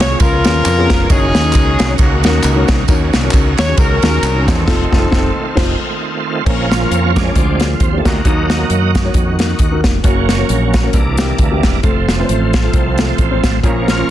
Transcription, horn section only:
0.01 0.19 C#5 medium
0.21 1.06 F4 medium
0.21 1.10 A#4 loud
1.10 1.96 C#4 medium
1.10 1.96 D#4 medium
1.10 1.96 G#4 loud
2.01 2.85 A#3 medium
2.01 2.86 D#4 medium
2.01 2.70 F#4 medium
3.58 3.77 C#5 medium
3.78 4.63 C#4 medium
3.78 4.63 F#4 medium
3.78 4.48 A#4 loud
4.48 5.98 C4 medium
4.48 5.98 D#4 medium
4.48 6.01 A4 medium

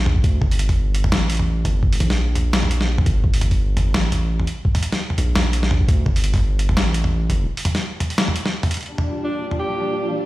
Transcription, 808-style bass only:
0.00 0.23 A#1 medium
0.24 0.40 D2 medium
0.41 1.11 G1 loud
1.12 1.64 A1 medium
1.65 1.99 G1 loud
2.01 3.05 A#1 medium
3.06 3.23 G1 loud
3.24 3.93 G1 loud
3.94 4.46 A1 medium
5.18 5.87 A#1 medium
5.88 6.05 D2 loud
6.06 6.75 G1 loud
6.77 7.28 A1 loud
7.30 7.47 G1 loud

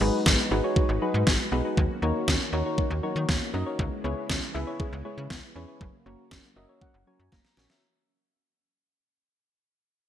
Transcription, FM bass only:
0.01 0.11 G#1 loud
0.26 0.36 G#1 loud
0.51 0.61 G#1 loud
0.89 0.99 G#1 medium
1.14 1.24 G#2 loud
1.27 1.37 G#1 medium
1.52 1.62 B1 medium
1.77 1.87 D#2 loud
2.02 2.12 D#2 loud
2.28 2.38 D#2 loud
2.53 2.63 D#2 loud
2.91 3.01 D#2 loud
3.16 3.26 D#3 loud
3.29 3.39 D#2 medium
3.54 3.64 F#2 medium
3.79 3.89 C#2 loud
4.04 4.14 C#2 loud
4.30 4.40 C#2 loud
4.55 4.65 C#2 loud
4.93 5.03 C#2 loud
5.18 5.28 C#3 loud
5.31 5.41 C#2 loud
5.56 5.66 E2 medium
5.81 5.91 F#1 loud
6.06 6.16 F#1 loud
6.31 6.41 F#1 loud
6.56 6.66 F#1 medium
6.94 7.04 F#1 medium
7.20 7.30 F#2 medium
7.32 7.42 F#1 medium
7.57 7.67 A#1 medium

